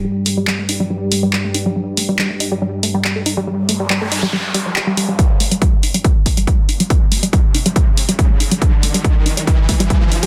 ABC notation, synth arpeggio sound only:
X:1
M:4/4
L:1/16
Q:1/4=140
K:Cdor
V:1 name="Synth arpeggio sound" clef=bass
G, z A, G, G, A, E G, G, z A, G, G, A, E G, | G, z A, G, G, A, E G, G, z A, G, G, A, E G, | G, z A, G, G, A, E G, G, z G, ^F, G G, G, G, | G, z A, G, G, A, E G, G, z A, G, G, A, E G, |
G, z A, G, G, A, E G, G, z A, G, G, A, E G, | G, z A, G, G, A, E G, G, z A, G, G, A, E G, |]